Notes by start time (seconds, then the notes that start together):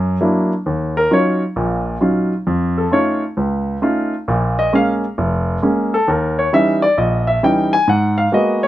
Already playing: F#2
0.21 F#3 A#3 D4 E4
0.66 D#2
0.97 A#4
1.11 F#3 C#4 D#4 F4 C#5
1.56 A#1 A#2
2.01 F#3 C#4 D#4 F4
2.47 F2
2.78 A4
2.91 A3 C#4 D#4 F4 C#5
3.37 C#2
3.82 A3 C#4 D#4 F4
4.28 A#1 A#2
4.59 D#5
4.73 G#3 A#3 C#4 F5
5.18 F1
5.62 G#3 A#3 C#4
5.94 A4
6.08 D#2 A#4
6.39 C#5
6.53 E3 G3 C#4 D#4 E5
6.82 D5
6.98 A#1 D#5
7.27 E5
7.43 E3 G3 C#4 D#4 G5
7.73 G#5
7.88 G#2 F#5
8.18 F5
8.32 G#3 A#3 B3 F#4 D#5
8.63 C#5